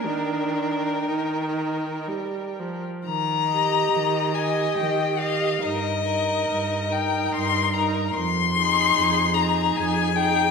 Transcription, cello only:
\new Staff \with { instrumentName = "Cello" } { \clef bass \time 3/4 \key ees \major \tempo 4 = 70 d'4 ees'4 r4 | ees4 ees4 ees4 | g,4 g,4 g,4 | f,4 f,4 f,4 | }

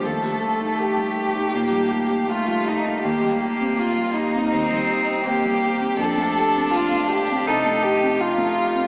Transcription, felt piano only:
\new Staff \with { instrumentName = "Felt piano" } { \time 4/4 \key ees \lydian \tempo 4 = 81 ees,16 g16 g'16 ees'8 g16 g'16 ees'16 bes,16 g16 g'16 ees'8 g16 g'16 ees'16 | ees,16 g16 g'16 c'8 g16 g'16 c'16 ees,16 g16 g'16 c'8 g16 g'16 c'16 | f,16 a16 g'16 c'8 a16 g'16 c'16 c16 a16 g'16 c'8 a16 g'16 c'16 | }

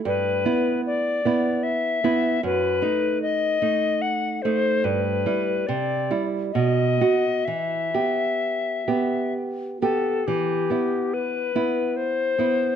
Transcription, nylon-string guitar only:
\new Staff \with { instrumentName = "Nylon-string guitar" } { \time 3/4 \key e \minor \tempo 4 = 71 g,8 <b e'>4 <b e'>4 <b e'>8 | fis,8 <a dis'>4 <a dis'>4 <a dis'>8 | g,8 <g e'>8 c8 <g e'>8 b,8 <b fis'>8 | e8 <b g'>4 <b g'>4 <b g'>8 |
e8 <b e'>4 <b e'>4 <b e'>8 | }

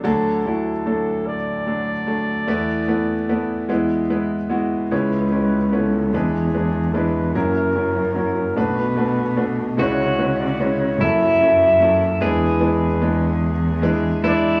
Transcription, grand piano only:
<<
  \new Staff \with { instrumentName = "Grand piano" } { \time 6/8 \key e \mixolydian \tempo 4. = 49 <fis a d' a'>8 <fis a d' e'>8 <fis a d' a'>8 r8 <fis a d' a'>8 <fis a d' a'>8 | <a b e' b'>8 <a b e' b'>8 <a b e' b'>8 <gis b e' b'>8 <gis b e' b'>8 <gis b e' fis'>8 | <gis cis' e' b'>8 <gis cis' e' b'>8 <b cis' e' b'>8 <gis d' e' b'>8 <gis d' e' b'>8 <gis d' e' b'>8 | <fis cis' e' ais'>8 <fis cis' e' ais'>8 <fis cis' e' ais'>8 <a d' fis' b'>8 <a d' fis' b'>8 <a d' fis' b'>8 |
<gis cis' e' b'>8 <gis cis' e' b'>8 <gis cis' e' b'>8 <fis cis' e' a'>8 <fis cis' e' a'>8 <fis cis' e' a'>8 | <gis d' e' b'>8 <gis d' e' b'>8 <gis d' e' b'>8 r8 <gis d' e' b'>8 <gis d' e' b'>8 | }
  \new Staff \with { instrumentName = "Grand piano" } { \clef bass \time 6/8 \key e \mixolydian <d, d>2. | <e, e>4. <e, e>4. | <cis, cis>4. <e, e>4. | <fis,, fis,>4. <b,, b,>4. |
<cis, cis>4. <fis,, fis,>4. | <e, e>2. | }
>>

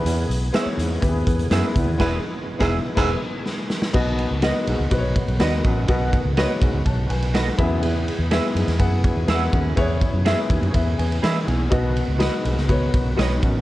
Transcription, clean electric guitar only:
\new Staff \with { instrumentName = "Clean electric guitar" } { \time 4/4 \key b \major \tempo 4 = 124 r4 <gis' b' e''>16 r4. r16 <gis' b' e''>16 r8. | <gis' b' e''>8 r8. <gis' b' e''>8 r16 <gis' b' e''>8 r4. | r4 <fis' b' dis''>16 r4. r16 <fis' b' dis''>16 r8. | r4 <fis' b' dis''>16 r4. r16 <fis' b' dis''>16 r8. |
r4 <gis' b' e''>16 r4. r16 <gis' b' e''>16 r8. | r4 <gis' b' e''>16 r4. r16 <gis' b' e''>16 r8. | r4 <fis' b' dis''>16 r4. r16 <fis' b' dis''>16 r8. | }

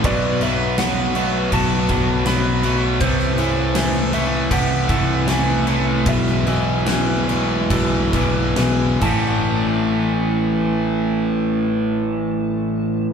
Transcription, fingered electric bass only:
\new Staff \with { instrumentName = "Fingered electric bass" } { \clef bass \time 4/4 \key a \dorian \tempo 4 = 76 b,,2 b,,8 b,,4. | c,2 c,8 c,4. | b,,2 b,,8 b,,8 b,,8 a,,8~ | a,,1 | }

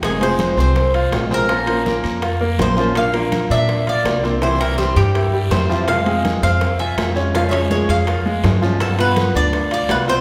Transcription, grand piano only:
\new Staff \with { instrumentName = "Grand piano" } { \time 4/4 \key f \minor \tempo 4 = 164 r8 <aes aes'>4 <c' c''>4 <f' f''>4 <c' c''>8 | <f f'>4 <bes bes'>4 <f' f''>8 <bes bes'>4 <f f'>8~ | <f f'>8 <bes bes'>4 <d' d''>4 <f' f''>4 <c' c''>8 | <e e'>4 <g g'>4 <e' e''>8 <g g'>4 <f f'>8~ |
<f f'>8 <aes aes'>4 <c' c''>4 <f' aes''>4 <des' des''>8 | <f f'>4 <aes aes'>4 <f' f''>8 <aes aes'>4 <f f'>8~ | <f f'>8 <b b'>4 <d' d''>4 <f' f''>4 <c' c''>8 | }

